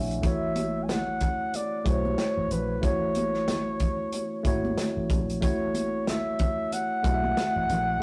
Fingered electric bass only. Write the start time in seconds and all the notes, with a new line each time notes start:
Already playing: A#1
0.24 A1
1.86 B1
2.37 A1
2.51 A#1
2.83 A1
4.45 G#1
4.97 A1
5.10 A#1
5.42 A1
7.04 B1
7.56 A1
7.70 A#1